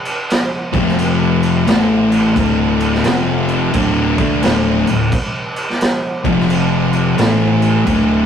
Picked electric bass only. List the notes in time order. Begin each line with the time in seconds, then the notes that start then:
0.73 F1
1.67 A1
2.37 D1
3.05 F1
3.74 D1
4.18 D2
4.43 D1
4.87 D1
6.25 F1
7.18 A1
7.87 D1